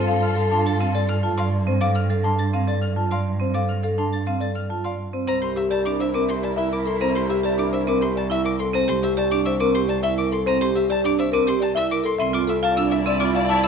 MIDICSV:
0, 0, Header, 1, 6, 480
1, 0, Start_track
1, 0, Tempo, 576923
1, 67, Time_signature, 3, 2, 24, 8
1, 11380, End_track
2, 0, Start_track
2, 0, Title_t, "Violin"
2, 0, Program_c, 0, 40
2, 188, Note_on_c, 0, 89, 72
2, 278, Note_off_c, 0, 89, 0
2, 311, Note_on_c, 0, 77, 72
2, 399, Note_off_c, 0, 77, 0
2, 429, Note_on_c, 0, 84, 103
2, 519, Note_off_c, 0, 84, 0
2, 550, Note_on_c, 0, 93, 79
2, 639, Note_off_c, 0, 93, 0
2, 668, Note_on_c, 0, 77, 81
2, 757, Note_off_c, 0, 77, 0
2, 789, Note_on_c, 0, 93, 97
2, 878, Note_off_c, 0, 93, 0
2, 904, Note_on_c, 0, 89, 77
2, 995, Note_off_c, 0, 89, 0
2, 1146, Note_on_c, 0, 77, 100
2, 1236, Note_off_c, 0, 77, 0
2, 1506, Note_on_c, 0, 86, 97
2, 1596, Note_off_c, 0, 86, 0
2, 1625, Note_on_c, 0, 89, 74
2, 1716, Note_off_c, 0, 89, 0
2, 1745, Note_on_c, 0, 77, 72
2, 1836, Note_off_c, 0, 77, 0
2, 1862, Note_on_c, 0, 84, 94
2, 1954, Note_off_c, 0, 84, 0
2, 1986, Note_on_c, 0, 93, 73
2, 2077, Note_off_c, 0, 93, 0
2, 2109, Note_on_c, 0, 77, 74
2, 2198, Note_off_c, 0, 77, 0
2, 2229, Note_on_c, 0, 93, 92
2, 2318, Note_off_c, 0, 93, 0
2, 2345, Note_on_c, 0, 89, 70
2, 2436, Note_off_c, 0, 89, 0
2, 2588, Note_on_c, 0, 77, 91
2, 2678, Note_off_c, 0, 77, 0
2, 2946, Note_on_c, 0, 86, 80
2, 3036, Note_off_c, 0, 86, 0
2, 3069, Note_on_c, 0, 89, 64
2, 3158, Note_off_c, 0, 89, 0
2, 3186, Note_on_c, 0, 77, 60
2, 3276, Note_off_c, 0, 77, 0
2, 3309, Note_on_c, 0, 84, 80
2, 3398, Note_off_c, 0, 84, 0
2, 3431, Note_on_c, 0, 93, 67
2, 3520, Note_off_c, 0, 93, 0
2, 3549, Note_on_c, 0, 77, 65
2, 3638, Note_off_c, 0, 77, 0
2, 3667, Note_on_c, 0, 93, 75
2, 3757, Note_off_c, 0, 93, 0
2, 3788, Note_on_c, 0, 89, 64
2, 3878, Note_off_c, 0, 89, 0
2, 4029, Note_on_c, 0, 77, 81
2, 4118, Note_off_c, 0, 77, 0
2, 4389, Note_on_c, 0, 82, 99
2, 4478, Note_off_c, 0, 82, 0
2, 4508, Note_on_c, 0, 84, 76
2, 4598, Note_off_c, 0, 84, 0
2, 4628, Note_on_c, 0, 76, 76
2, 4718, Note_off_c, 0, 76, 0
2, 4748, Note_on_c, 0, 81, 104
2, 4838, Note_off_c, 0, 81, 0
2, 4871, Note_on_c, 0, 86, 82
2, 4960, Note_off_c, 0, 86, 0
2, 4994, Note_on_c, 0, 76, 79
2, 5081, Note_off_c, 0, 76, 0
2, 5108, Note_on_c, 0, 86, 106
2, 5198, Note_off_c, 0, 86, 0
2, 5232, Note_on_c, 0, 84, 77
2, 5320, Note_off_c, 0, 84, 0
2, 5350, Note_on_c, 0, 81, 79
2, 5439, Note_off_c, 0, 81, 0
2, 5470, Note_on_c, 0, 76, 101
2, 5559, Note_off_c, 0, 76, 0
2, 5596, Note_on_c, 0, 86, 82
2, 5683, Note_off_c, 0, 86, 0
2, 5714, Note_on_c, 0, 84, 84
2, 5802, Note_off_c, 0, 84, 0
2, 5829, Note_on_c, 0, 82, 105
2, 5918, Note_off_c, 0, 82, 0
2, 5954, Note_on_c, 0, 84, 82
2, 6041, Note_off_c, 0, 84, 0
2, 6071, Note_on_c, 0, 76, 76
2, 6159, Note_off_c, 0, 76, 0
2, 6192, Note_on_c, 0, 81, 104
2, 6280, Note_off_c, 0, 81, 0
2, 6312, Note_on_c, 0, 86, 81
2, 6400, Note_off_c, 0, 86, 0
2, 6430, Note_on_c, 0, 76, 85
2, 6519, Note_off_c, 0, 76, 0
2, 6554, Note_on_c, 0, 86, 104
2, 6641, Note_off_c, 0, 86, 0
2, 6672, Note_on_c, 0, 84, 81
2, 6760, Note_off_c, 0, 84, 0
2, 6796, Note_on_c, 0, 81, 87
2, 6883, Note_off_c, 0, 81, 0
2, 6913, Note_on_c, 0, 76, 109
2, 7001, Note_off_c, 0, 76, 0
2, 7031, Note_on_c, 0, 86, 91
2, 7120, Note_off_c, 0, 86, 0
2, 7148, Note_on_c, 0, 84, 86
2, 7238, Note_off_c, 0, 84, 0
2, 7270, Note_on_c, 0, 82, 113
2, 7359, Note_off_c, 0, 82, 0
2, 7388, Note_on_c, 0, 84, 85
2, 7478, Note_off_c, 0, 84, 0
2, 7511, Note_on_c, 0, 76, 85
2, 7600, Note_off_c, 0, 76, 0
2, 7629, Note_on_c, 0, 81, 119
2, 7718, Note_off_c, 0, 81, 0
2, 7749, Note_on_c, 0, 86, 99
2, 7838, Note_off_c, 0, 86, 0
2, 7866, Note_on_c, 0, 76, 94
2, 7957, Note_off_c, 0, 76, 0
2, 7986, Note_on_c, 0, 86, 118
2, 8076, Note_off_c, 0, 86, 0
2, 8110, Note_on_c, 0, 84, 93
2, 8199, Note_off_c, 0, 84, 0
2, 8228, Note_on_c, 0, 81, 96
2, 8318, Note_off_c, 0, 81, 0
2, 8346, Note_on_c, 0, 76, 115
2, 8436, Note_off_c, 0, 76, 0
2, 8469, Note_on_c, 0, 86, 91
2, 8559, Note_off_c, 0, 86, 0
2, 8586, Note_on_c, 0, 84, 87
2, 8677, Note_off_c, 0, 84, 0
2, 8710, Note_on_c, 0, 82, 114
2, 8799, Note_off_c, 0, 82, 0
2, 8828, Note_on_c, 0, 84, 89
2, 8918, Note_off_c, 0, 84, 0
2, 8948, Note_on_c, 0, 76, 83
2, 9038, Note_off_c, 0, 76, 0
2, 9068, Note_on_c, 0, 81, 126
2, 9157, Note_off_c, 0, 81, 0
2, 9193, Note_on_c, 0, 86, 92
2, 9281, Note_off_c, 0, 86, 0
2, 9307, Note_on_c, 0, 76, 97
2, 9397, Note_off_c, 0, 76, 0
2, 9428, Note_on_c, 0, 86, 116
2, 9518, Note_off_c, 0, 86, 0
2, 9548, Note_on_c, 0, 84, 91
2, 9638, Note_off_c, 0, 84, 0
2, 9666, Note_on_c, 0, 81, 98
2, 9756, Note_off_c, 0, 81, 0
2, 9789, Note_on_c, 0, 76, 121
2, 9878, Note_off_c, 0, 76, 0
2, 9912, Note_on_c, 0, 86, 96
2, 10000, Note_off_c, 0, 86, 0
2, 10028, Note_on_c, 0, 84, 100
2, 10117, Note_off_c, 0, 84, 0
2, 10149, Note_on_c, 0, 84, 116
2, 10238, Note_off_c, 0, 84, 0
2, 10267, Note_on_c, 0, 86, 91
2, 10357, Note_off_c, 0, 86, 0
2, 10389, Note_on_c, 0, 76, 86
2, 10478, Note_off_c, 0, 76, 0
2, 10507, Note_on_c, 0, 81, 120
2, 10597, Note_off_c, 0, 81, 0
2, 10624, Note_on_c, 0, 88, 105
2, 10715, Note_off_c, 0, 88, 0
2, 10743, Note_on_c, 0, 76, 90
2, 10835, Note_off_c, 0, 76, 0
2, 10863, Note_on_c, 0, 88, 119
2, 10954, Note_off_c, 0, 88, 0
2, 10983, Note_on_c, 0, 86, 88
2, 11074, Note_off_c, 0, 86, 0
2, 11107, Note_on_c, 0, 81, 90
2, 11197, Note_off_c, 0, 81, 0
2, 11224, Note_on_c, 0, 76, 123
2, 11315, Note_off_c, 0, 76, 0
2, 11345, Note_on_c, 0, 88, 94
2, 11380, Note_off_c, 0, 88, 0
2, 11380, End_track
3, 0, Start_track
3, 0, Title_t, "Marimba"
3, 0, Program_c, 1, 12
3, 0, Note_on_c, 1, 72, 82
3, 60, Note_on_c, 1, 77, 105
3, 101, Note_off_c, 1, 72, 0
3, 221, Note_off_c, 1, 77, 0
3, 293, Note_on_c, 1, 69, 86
3, 416, Note_on_c, 1, 81, 97
3, 458, Note_off_c, 1, 69, 0
3, 579, Note_off_c, 1, 81, 0
3, 660, Note_on_c, 1, 77, 75
3, 788, Note_on_c, 1, 74, 93
3, 821, Note_off_c, 1, 77, 0
3, 943, Note_off_c, 1, 74, 0
3, 1027, Note_on_c, 1, 81, 76
3, 1145, Note_on_c, 1, 84, 98
3, 1183, Note_off_c, 1, 81, 0
3, 1303, Note_off_c, 1, 84, 0
3, 1393, Note_on_c, 1, 72, 84
3, 1507, Note_on_c, 1, 77, 105
3, 1545, Note_off_c, 1, 72, 0
3, 1663, Note_off_c, 1, 77, 0
3, 1746, Note_on_c, 1, 69, 80
3, 1861, Note_on_c, 1, 81, 90
3, 1903, Note_off_c, 1, 69, 0
3, 2021, Note_off_c, 1, 81, 0
3, 2107, Note_on_c, 1, 77, 68
3, 2229, Note_on_c, 1, 74, 90
3, 2263, Note_off_c, 1, 77, 0
3, 2384, Note_off_c, 1, 74, 0
3, 2465, Note_on_c, 1, 81, 69
3, 2596, Note_on_c, 1, 84, 94
3, 2622, Note_off_c, 1, 81, 0
3, 2746, Note_off_c, 1, 84, 0
3, 2837, Note_on_c, 1, 72, 72
3, 2951, Note_on_c, 1, 77, 82
3, 2987, Note_off_c, 1, 72, 0
3, 3105, Note_off_c, 1, 77, 0
3, 3196, Note_on_c, 1, 69, 75
3, 3311, Note_on_c, 1, 81, 74
3, 3346, Note_off_c, 1, 69, 0
3, 3465, Note_off_c, 1, 81, 0
3, 3552, Note_on_c, 1, 77, 64
3, 3664, Note_on_c, 1, 74, 75
3, 3705, Note_off_c, 1, 77, 0
3, 3822, Note_off_c, 1, 74, 0
3, 3906, Note_on_c, 1, 81, 63
3, 4031, Note_on_c, 1, 84, 79
3, 4063, Note_off_c, 1, 81, 0
3, 4184, Note_off_c, 1, 84, 0
3, 4272, Note_on_c, 1, 72, 68
3, 4383, Note_off_c, 1, 72, 0
3, 4393, Note_on_c, 1, 72, 99
3, 4545, Note_off_c, 1, 72, 0
3, 4628, Note_on_c, 1, 67, 80
3, 4745, Note_on_c, 1, 74, 100
3, 4784, Note_off_c, 1, 67, 0
3, 4903, Note_off_c, 1, 74, 0
3, 4991, Note_on_c, 1, 72, 79
3, 5107, Note_on_c, 1, 70, 95
3, 5145, Note_off_c, 1, 72, 0
3, 5263, Note_off_c, 1, 70, 0
3, 5351, Note_on_c, 1, 74, 77
3, 5461, Note_on_c, 1, 76, 111
3, 5505, Note_off_c, 1, 74, 0
3, 5621, Note_off_c, 1, 76, 0
3, 5705, Note_on_c, 1, 69, 88
3, 5834, Note_on_c, 1, 72, 105
3, 5862, Note_off_c, 1, 69, 0
3, 5985, Note_off_c, 1, 72, 0
3, 6070, Note_on_c, 1, 67, 91
3, 6197, Note_on_c, 1, 74, 103
3, 6224, Note_off_c, 1, 67, 0
3, 6347, Note_off_c, 1, 74, 0
3, 6427, Note_on_c, 1, 72, 81
3, 6550, Note_on_c, 1, 70, 102
3, 6583, Note_off_c, 1, 72, 0
3, 6704, Note_off_c, 1, 70, 0
3, 6788, Note_on_c, 1, 74, 83
3, 6915, Note_on_c, 1, 76, 112
3, 6944, Note_off_c, 1, 74, 0
3, 7066, Note_off_c, 1, 76, 0
3, 7154, Note_on_c, 1, 69, 88
3, 7278, Note_on_c, 1, 72, 115
3, 7306, Note_off_c, 1, 69, 0
3, 7427, Note_off_c, 1, 72, 0
3, 7514, Note_on_c, 1, 67, 97
3, 7636, Note_on_c, 1, 74, 103
3, 7666, Note_off_c, 1, 67, 0
3, 7786, Note_off_c, 1, 74, 0
3, 7875, Note_on_c, 1, 72, 87
3, 7991, Note_on_c, 1, 70, 112
3, 8026, Note_off_c, 1, 72, 0
3, 8144, Note_off_c, 1, 70, 0
3, 8221, Note_on_c, 1, 74, 91
3, 8345, Note_on_c, 1, 76, 115
3, 8381, Note_off_c, 1, 74, 0
3, 8502, Note_off_c, 1, 76, 0
3, 8583, Note_on_c, 1, 69, 92
3, 8706, Note_on_c, 1, 72, 125
3, 8742, Note_off_c, 1, 69, 0
3, 8863, Note_off_c, 1, 72, 0
3, 8948, Note_on_c, 1, 67, 103
3, 9067, Note_on_c, 1, 74, 120
3, 9103, Note_off_c, 1, 67, 0
3, 9223, Note_off_c, 1, 74, 0
3, 9310, Note_on_c, 1, 72, 91
3, 9418, Note_on_c, 1, 70, 113
3, 9464, Note_off_c, 1, 72, 0
3, 9580, Note_off_c, 1, 70, 0
3, 9653, Note_on_c, 1, 74, 90
3, 9774, Note_on_c, 1, 76, 125
3, 9818, Note_off_c, 1, 74, 0
3, 9939, Note_off_c, 1, 76, 0
3, 10014, Note_on_c, 1, 69, 100
3, 10138, Note_on_c, 1, 76, 118
3, 10179, Note_off_c, 1, 69, 0
3, 10300, Note_off_c, 1, 76, 0
3, 10378, Note_on_c, 1, 69, 102
3, 10505, Note_on_c, 1, 77, 122
3, 10540, Note_off_c, 1, 69, 0
3, 10662, Note_off_c, 1, 77, 0
3, 10745, Note_on_c, 1, 76, 83
3, 10872, Note_on_c, 1, 74, 111
3, 10903, Note_off_c, 1, 76, 0
3, 11025, Note_off_c, 1, 74, 0
3, 11106, Note_on_c, 1, 77, 88
3, 11223, Note_on_c, 1, 81, 116
3, 11263, Note_off_c, 1, 77, 0
3, 11380, Note_off_c, 1, 81, 0
3, 11380, End_track
4, 0, Start_track
4, 0, Title_t, "String section"
4, 0, Program_c, 2, 48
4, 0, Note_on_c, 2, 65, 83
4, 0, Note_on_c, 2, 69, 87
4, 1356, Note_off_c, 2, 69, 0
4, 1357, Note_off_c, 2, 65, 0
4, 4387, Note_on_c, 2, 70, 87
4, 4388, Note_on_c, 2, 64, 83
4, 7114, Note_off_c, 2, 64, 0
4, 7114, Note_off_c, 2, 70, 0
4, 10147, Note_on_c, 2, 64, 105
4, 10147, Note_on_c, 2, 74, 102
4, 11380, Note_off_c, 2, 64, 0
4, 11380, Note_off_c, 2, 74, 0
4, 11380, End_track
5, 0, Start_track
5, 0, Title_t, "Vibraphone"
5, 0, Program_c, 3, 11
5, 0, Note_on_c, 3, 60, 79
5, 71, Note_on_c, 3, 69, 83
5, 104, Note_off_c, 3, 60, 0
5, 225, Note_off_c, 3, 69, 0
5, 306, Note_on_c, 3, 69, 78
5, 430, Note_on_c, 3, 62, 79
5, 463, Note_off_c, 3, 69, 0
5, 584, Note_off_c, 3, 62, 0
5, 671, Note_on_c, 3, 60, 76
5, 789, Note_on_c, 3, 69, 80
5, 825, Note_off_c, 3, 60, 0
5, 944, Note_off_c, 3, 69, 0
5, 1026, Note_on_c, 3, 65, 81
5, 1149, Note_on_c, 3, 74, 76
5, 1183, Note_off_c, 3, 65, 0
5, 1304, Note_off_c, 3, 74, 0
5, 1387, Note_on_c, 3, 60, 81
5, 1506, Note_on_c, 3, 69, 78
5, 1543, Note_off_c, 3, 60, 0
5, 1663, Note_off_c, 3, 69, 0
5, 1746, Note_on_c, 3, 69, 77
5, 1867, Note_on_c, 3, 62, 74
5, 1903, Note_off_c, 3, 69, 0
5, 2023, Note_off_c, 3, 62, 0
5, 2110, Note_on_c, 3, 60, 69
5, 2224, Note_on_c, 3, 69, 71
5, 2264, Note_off_c, 3, 60, 0
5, 2382, Note_off_c, 3, 69, 0
5, 2465, Note_on_c, 3, 65, 71
5, 2588, Note_on_c, 3, 74, 68
5, 2623, Note_off_c, 3, 65, 0
5, 2743, Note_off_c, 3, 74, 0
5, 2826, Note_on_c, 3, 60, 67
5, 2950, Note_on_c, 3, 69, 69
5, 2983, Note_off_c, 3, 60, 0
5, 3104, Note_off_c, 3, 69, 0
5, 3191, Note_on_c, 3, 69, 69
5, 3311, Note_on_c, 3, 62, 71
5, 3344, Note_off_c, 3, 69, 0
5, 3465, Note_off_c, 3, 62, 0
5, 3552, Note_on_c, 3, 60, 65
5, 3671, Note_on_c, 3, 69, 65
5, 3705, Note_off_c, 3, 60, 0
5, 3825, Note_off_c, 3, 69, 0
5, 3911, Note_on_c, 3, 65, 66
5, 4029, Note_on_c, 3, 74, 65
5, 4064, Note_off_c, 3, 65, 0
5, 4184, Note_off_c, 3, 74, 0
5, 4270, Note_on_c, 3, 60, 65
5, 4380, Note_off_c, 3, 60, 0
5, 4390, Note_on_c, 3, 60, 80
5, 4507, Note_on_c, 3, 67, 75
5, 4544, Note_off_c, 3, 60, 0
5, 4663, Note_off_c, 3, 67, 0
5, 4748, Note_on_c, 3, 67, 82
5, 4869, Note_on_c, 3, 62, 87
5, 4903, Note_off_c, 3, 67, 0
5, 5024, Note_off_c, 3, 62, 0
5, 5111, Note_on_c, 3, 60, 81
5, 5230, Note_on_c, 3, 67, 73
5, 5265, Note_off_c, 3, 60, 0
5, 5384, Note_off_c, 3, 67, 0
5, 5472, Note_on_c, 3, 64, 77
5, 5589, Note_on_c, 3, 70, 74
5, 5625, Note_off_c, 3, 64, 0
5, 5744, Note_off_c, 3, 70, 0
5, 5833, Note_on_c, 3, 60, 86
5, 5951, Note_on_c, 3, 67, 82
5, 5985, Note_off_c, 3, 60, 0
5, 6105, Note_off_c, 3, 67, 0
5, 6186, Note_on_c, 3, 67, 81
5, 6305, Note_on_c, 3, 62, 86
5, 6343, Note_off_c, 3, 67, 0
5, 6462, Note_off_c, 3, 62, 0
5, 6549, Note_on_c, 3, 60, 84
5, 6665, Note_on_c, 3, 67, 80
5, 6704, Note_off_c, 3, 60, 0
5, 6822, Note_off_c, 3, 67, 0
5, 6905, Note_on_c, 3, 64, 87
5, 7026, Note_on_c, 3, 70, 82
5, 7062, Note_off_c, 3, 64, 0
5, 7183, Note_off_c, 3, 70, 0
5, 7267, Note_on_c, 3, 60, 90
5, 7388, Note_on_c, 3, 67, 84
5, 7423, Note_off_c, 3, 60, 0
5, 7543, Note_off_c, 3, 67, 0
5, 7629, Note_on_c, 3, 67, 91
5, 7750, Note_on_c, 3, 62, 92
5, 7784, Note_off_c, 3, 67, 0
5, 7904, Note_off_c, 3, 62, 0
5, 7992, Note_on_c, 3, 60, 92
5, 8109, Note_on_c, 3, 67, 96
5, 8145, Note_off_c, 3, 60, 0
5, 8264, Note_off_c, 3, 67, 0
5, 8349, Note_on_c, 3, 64, 91
5, 8470, Note_on_c, 3, 70, 87
5, 8504, Note_off_c, 3, 64, 0
5, 8624, Note_off_c, 3, 70, 0
5, 8711, Note_on_c, 3, 60, 101
5, 8829, Note_on_c, 3, 67, 94
5, 8864, Note_off_c, 3, 60, 0
5, 8984, Note_off_c, 3, 67, 0
5, 9069, Note_on_c, 3, 67, 96
5, 9187, Note_on_c, 3, 62, 101
5, 9224, Note_off_c, 3, 67, 0
5, 9343, Note_off_c, 3, 62, 0
5, 9429, Note_on_c, 3, 60, 95
5, 9544, Note_on_c, 3, 67, 96
5, 9584, Note_off_c, 3, 60, 0
5, 9702, Note_off_c, 3, 67, 0
5, 9782, Note_on_c, 3, 64, 95
5, 9905, Note_on_c, 3, 70, 87
5, 9941, Note_off_c, 3, 64, 0
5, 10062, Note_off_c, 3, 70, 0
5, 10146, Note_on_c, 3, 60, 92
5, 10261, Note_on_c, 3, 65, 92
5, 10303, Note_off_c, 3, 60, 0
5, 10421, Note_off_c, 3, 65, 0
5, 10506, Note_on_c, 3, 65, 91
5, 10625, Note_on_c, 3, 62, 97
5, 10663, Note_off_c, 3, 65, 0
5, 10782, Note_off_c, 3, 62, 0
5, 10866, Note_on_c, 3, 60, 97
5, 10985, Note_on_c, 3, 65, 89
5, 11023, Note_off_c, 3, 60, 0
5, 11142, Note_off_c, 3, 65, 0
5, 11222, Note_on_c, 3, 64, 92
5, 11347, Note_on_c, 3, 72, 84
5, 11380, Note_off_c, 3, 64, 0
5, 11380, Note_off_c, 3, 72, 0
5, 11380, End_track
6, 0, Start_track
6, 0, Title_t, "Cello"
6, 0, Program_c, 4, 42
6, 0, Note_on_c, 4, 43, 84
6, 4257, Note_off_c, 4, 43, 0
6, 4386, Note_on_c, 4, 36, 79
6, 10017, Note_off_c, 4, 36, 0
6, 10145, Note_on_c, 4, 36, 93
6, 11380, Note_off_c, 4, 36, 0
6, 11380, End_track
0, 0, End_of_file